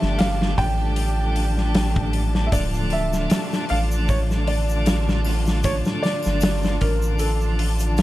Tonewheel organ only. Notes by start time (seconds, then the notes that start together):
Already playing: D3 G3 A3 D4
0.57 D3 G3 A3 D4
2.52 D3 F3 A3 D4
3.69 D3 F3 A3 D4
5.25 D3 F3 A3 D4
5.64 D3 F3 A3 D4
6.80 D3 F3 D4